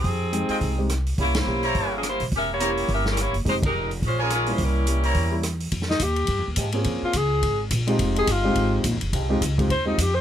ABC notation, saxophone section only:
X:1
M:4/4
L:1/8
Q:"Swing" 1/4=212
K:Fm
V:1 name="Saxophone section"
[E,CGA]6 z2 | [B,=EGd] [B,EGc]3 [B,EGd] [F,B,DA] [B,EGc] z | [DGB=e] [B,=EGd]3 [DGBe] [G,DEB] [B,EGd] z | [A,EGc] [A,EGB]2 z [A,DFc] [F,B,DA] [A,DFB] [A,DFc] |
[G,D=EB]6 z2 | z8 | z8 | z8 |
z8 |]